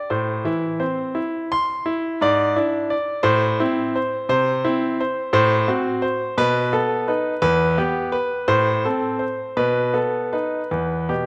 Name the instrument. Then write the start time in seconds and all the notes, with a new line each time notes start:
grand piano
Already playing: D5
0.10 A2 C5
0.44 E3 E4
0.79 C4 C5
1.15 E4
1.52 C6
1.86 E4
2.21 G#2 D5
2.56 D4 E4
2.90 D5
3.23 A2 C5
3.60 C4 E4
3.95 C5
4.29 C3 C5
4.65 C4 E4
5.00 C5
5.33 A2 C5
5.68 C4 F#4
6.02 C5
6.38 B2 B4
6.73 B3 A4
7.08 D#4 B4
7.42 E2 B4
7.78 B3 G4
8.12 B4
8.48 A2 C5
8.85 C4 A4
9.19 C5
9.57 B2 B4
9.94 B3 A4
10.33 D#4 B4
10.71 E2 B4
11.09 B2 G4